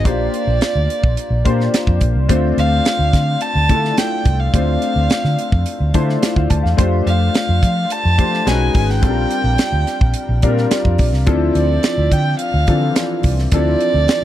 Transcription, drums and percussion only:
0.05 kick loud
0.05 closed hi-hat medium
0.34 closed hi-hat medium
0.61 snare loud
0.61 closed hi-hat medium
0.90 closed hi-hat medium
1.04 kick medium
1.17 closed hi-hat medium
1.45 kick medium
1.45 closed hi-hat medium
1.60 snare soft
1.74 snare medium
1.74 closed hi-hat medium
1.87 kick medium
2.01 kick medium
2.01 closed hi-hat medium
2.29 kick loud
2.29 closed hi-hat medium
2.58 closed hi-hat medium
2.85 snare loud
2.85 closed hi-hat medium
3.13 kick medium
3.13 snare soft
3.13 closed hi-hat medium
3.41 closed hi-hat medium
3.69 kick medium
3.69 closed hi-hat medium
3.85 snare soft
3.98 snare loud
3.98 closed hi-hat medium
4.25 kick medium
4.25 closed hi-hat medium
4.54 kick loud
4.54 closed hi-hat medium
4.82 closed hi-hat medium
5.10 snare medium
5.10 closed hi-hat medium
5.24 snare soft
5.39 closed hi-hat medium
5.52 kick medium
5.66 closed hi-hat medium
5.94 kick medium
5.94 closed hi-hat medium
6.09 snare soft
6.23 snare loud
6.23 closed hi-hat medium
6.36 kick medium
6.50 kick medium
6.50 closed hi-hat medium
6.66 snare soft
6.78 kick loud
6.78 closed hi-hat medium
7.07 closed hi-hat medium
7.34 snare loud
7.34 closed hi-hat medium
7.63 kick medium
7.63 closed hi-hat medium
7.90 closed hi-hat medium
8.18 kick medium
8.18 closed hi-hat medium
8.34 snare soft
8.47 snare loud
8.47 closed hi-hat medium
8.74 kick medium
8.74 open hi-hat medium
8.90 snare soft
9.03 kick loud
9.03 closed hi-hat medium
9.31 closed hi-hat medium
9.58 snare loud
9.58 closed hi-hat medium
9.87 snare soft
9.87 closed hi-hat medium
10.01 kick medium
10.14 closed hi-hat medium
10.42 kick medium
10.42 closed hi-hat medium
10.58 snare soft
10.71 snare loud
10.71 closed hi-hat medium
10.85 kick medium
10.98 kick medium
10.98 open hi-hat medium
11.14 snare soft
11.27 kick loud
11.27 closed hi-hat medium
11.55 closed hi-hat medium
11.83 snare loud
11.83 closed hi-hat medium
12.12 kick medium
12.12 closed hi-hat medium
12.39 closed hi-hat medium
12.67 kick medium
12.67 closed hi-hat medium
12.96 snare loud
12.96 closed hi-hat medium
13.23 kick medium
13.23 open hi-hat medium
13.39 snare soft
13.52 kick loud
13.52 closed hi-hat loud
13.80 closed hi-hat medium
14.08 snare loud
14.08 closed hi-hat medium

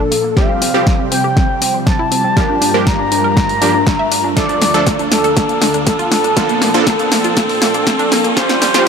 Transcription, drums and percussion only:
0.12 open hi-hat loud
0.37 kick loud
0.37 snare medium
0.62 open hi-hat loud
0.87 kick loud
0.87 snare medium
1.12 open hi-hat loud
1.37 kick loud
1.37 snare medium
1.62 open hi-hat loud
1.87 kick loud
1.87 snare medium
2.12 open hi-hat loud
2.37 kick loud
2.37 snare medium
2.62 open hi-hat loud
2.87 kick loud
2.87 snare medium
3.12 open hi-hat loud
3.37 kick loud
3.37 snare medium
3.49 open hi-hat medium
3.62 open hi-hat loud
3.87 kick loud
3.87 snare medium
4.12 open hi-hat loud
4.37 kick loud
4.37 snare medium
4.37 closed hi-hat medium
4.49 closed hi-hat soft
4.62 snare medium
4.62 open hi-hat loud
4.74 closed hi-hat soft
4.87 kick loud
4.87 snare medium
4.87 closed hi-hat medium
4.99 closed hi-hat soft
5.12 snare medium
5.12 open hi-hat loud
5.24 closed hi-hat soft
5.37 kick loud
5.37 snare medium
5.37 closed hi-hat medium
5.49 closed hi-hat soft
5.62 snare medium
5.62 open hi-hat loud
5.74 closed hi-hat soft
5.87 kick loud
5.87 snare medium
5.87 closed hi-hat medium
5.99 closed hi-hat soft
6.12 snare medium
6.12 open hi-hat loud
6.24 closed hi-hat soft
6.37 kick loud
6.37 snare medium
6.37 closed hi-hat medium
6.49 closed hi-hat soft
6.62 snare medium
6.62 open hi-hat loud
6.74 closed hi-hat soft
6.87 kick loud
6.87 snare medium
6.87 closed hi-hat medium
6.99 closed hi-hat soft
7.12 snare medium
7.12 open hi-hat loud
7.24 closed hi-hat soft
7.37 kick loud
7.37 snare medium
7.37 closed hi-hat medium
7.49 open hi-hat medium
7.62 snare medium
7.62 open hi-hat loud
7.74 closed hi-hat soft
7.87 kick loud
7.87 snare medium
7.87 closed hi-hat medium
7.99 closed hi-hat soft
8.12 snare medium
8.12 open hi-hat loud
8.24 closed hi-hat soft
8.37 kick loud
8.37 snare medium
8.37 closed hi-hat medium
8.49 snare medium
8.49 closed hi-hat soft
8.62 snare medium
8.62 open hi-hat loud
8.74 snare medium
8.74 closed hi-hat soft

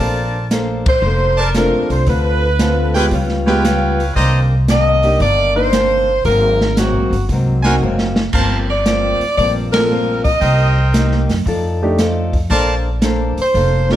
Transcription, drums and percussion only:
0.51 snare medium
0.51 closed hi-hat medium
0.86 kick medium
0.86 ride medium
1.54 snare medium
1.54 closed hi-hat soft
1.90 open hi-hat soft
2.06 kick soft
2.06 open hi-hat soft
2.59 snare medium
2.59 closed hi-hat medium
2.95 open hi-hat soft
3.11 kick soft
3.11 open hi-hat soft
3.29 snare soft
3.47 snare soft
3.65 snare medium
3.65 closed hi-hat soft
4.00 open hi-hat soft
4.16 kick soft
4.16 open hi-hat soft
4.68 snare medium
4.68 closed hi-hat medium
5.03 open hi-hat soft
5.20 kick soft
5.20 open hi-hat soft
5.73 snare medium
5.73 closed hi-hat soft
6.25 kick soft
6.25 open hi-hat soft
6.61 snare medium
6.77 snare medium
6.77 closed hi-hat medium
7.13 open hi-hat soft
7.29 kick soft
7.29 open hi-hat soft
7.64 snare medium
7.99 snare medium
8.16 snare medium
8.33 kick medium
8.33 crash medium
8.86 snare medium
8.86 closed hi-hat soft
9.21 open hi-hat soft
9.38 kick soft
9.38 open hi-hat soft
9.74 snare medium
9.74 ride medium
10.25 kick soft
10.25 open hi-hat soft
10.41 kick soft
10.41 open hi-hat soft
10.94 snare medium
10.94 closed hi-hat medium
11.12 snare soft
11.29 snare soft
11.29 open hi-hat soft
11.46 kick soft
11.46 open hi-hat soft
11.99 snare medium
11.99 closed hi-hat medium
12.33 kick soft
12.33 open hi-hat soft
12.50 kick soft
12.50 open hi-hat soft
13.02 snare medium
13.02 closed hi-hat medium
13.37 open hi-hat soft
13.55 kick soft
13.55 open hi-hat soft
13.90 snare soft

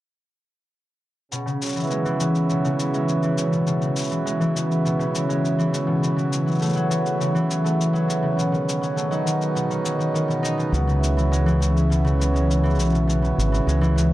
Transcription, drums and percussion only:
1.32 cabasa soft
1.47 cabasa soft
1.62 cabasa medium
1.66 cabasa soft
1.69 cabasa soft
1.72 cabasa soft
1.76 cabasa soft
1.80 cabasa soft
1.83 cabasa soft
1.87 cabasa soft
1.91 cabasa soft
2.05 cabasa soft
2.20 cabasa medium
2.35 cabasa soft
2.50 cabasa soft
2.65 cabasa soft
2.79 cabasa medium
2.94 cabasa soft
3.08 cabasa soft
3.23 cabasa soft
3.38 cabasa medium
3.53 cabasa soft
3.67 cabasa soft
3.82 cabasa soft
3.96 cabasa medium
3.98 cabasa medium
4.01 cabasa soft
4.04 cabasa soft
4.07 cabasa soft
4.09 cabasa soft
4.12 cabasa soft
4.27 cabasa soft
4.41 cabasa soft
4.56 cabasa medium
4.71 cabasa soft
4.86 cabasa soft
5.00 cabasa soft
5.15 cabasa medium
5.30 cabasa soft
5.45 cabasa soft
5.60 cabasa soft
5.74 cabasa medium
6.04 cabasa soft
6.18 cabasa soft
6.33 cabasa medium
6.48 cabasa soft
6.51 cabasa soft
6.55 cabasa soft
6.59 cabasa soft
6.62 cabasa soft
6.66 cabasa soft
6.69 cabasa soft
6.73 cabasa soft
6.77 cabasa soft
6.91 cabasa medium
7.06 cabasa soft
7.21 cabasa soft
7.36 cabasa soft
7.51 cabasa medium
7.66 cabasa soft
7.81 cabasa soft
7.95 cabasa soft
8.10 cabasa medium
8.39 cabasa soft
8.54 cabasa soft
8.69 cabasa medium
8.83 cabasa soft
8.98 cabasa soft
9.12 cabasa soft
9.27 cabasa medium
9.41 cabasa soft
9.56 cabasa soft
9.71 cabasa soft
9.85 cabasa medium
10.01 cabasa soft
10.16 cabasa soft
10.30 cabasa soft
10.45 cabasa medium
10.60 cabasa soft
10.74 cabasa soft
10.89 cabasa soft
11.03 cabasa medium
11.18 cabasa soft
11.33 cabasa soft
11.48 cabasa soft
11.62 cabasa medium
11.77 cabasa soft
11.92 cabasa soft
12.07 cabasa soft
12.21 cabasa medium
12.36 cabasa soft
12.51 cabasa soft
12.65 cabasa soft
12.70 cabasa soft
12.75 cabasa soft
12.79 cabasa medium
12.89 cabasa soft
12.95 cabasa soft
13.10 cabasa soft
13.25 cabasa soft
13.39 cabasa medium
13.54 cabasa soft
13.69 cabasa soft
13.83 cabasa soft
13.98 cabasa medium

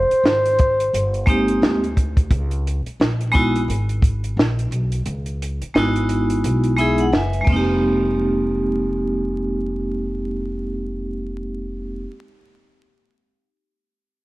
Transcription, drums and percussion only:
0.11 closed hi-hat medium
0.26 snare loud
0.46 closed hi-hat medium
0.59 kick loud
0.59 closed hi-hat medium
0.80 closed hi-hat medium
0.94 closed hi-hat loud
1.14 closed hi-hat soft
1.27 kick loud
1.27 closed hi-hat medium
1.48 closed hi-hat soft
1.63 snare loud
1.84 closed hi-hat soft
1.97 kick medium
1.97 closed hi-hat medium
2.17 kick medium
2.17 closed hi-hat medium
2.31 kick loud
2.31 closed hi-hat medium
2.51 closed hi-hat soft
2.67 closed hi-hat medium
2.86 closed hi-hat medium
3.01 snare loud
3.21 closed hi-hat soft
3.34 kick loud
3.34 closed hi-hat medium
3.56 closed hi-hat medium
3.70 closed hi-hat loud
3.89 closed hi-hat soft
4.02 kick loud
4.02 closed hi-hat medium
4.24 closed hi-hat soft
4.39 snare loud
4.59 closed hi-hat soft
4.72 closed hi-hat medium
4.92 closed hi-hat medium
5.06 closed hi-hat medium
5.26 closed hi-hat soft
5.42 closed hi-hat medium
5.62 closed hi-hat medium
5.76 snare loud
5.96 closed hi-hat medium
6.09 closed hi-hat medium
6.30 closed hi-hat medium
6.44 closed hi-hat loud
6.64 closed hi-hat soft
6.78 closed hi-hat medium
6.98 closed hi-hat soft
7.13 snare loud
7.33 closed hi-hat soft
7.47 kick loud
7.47 crash medium

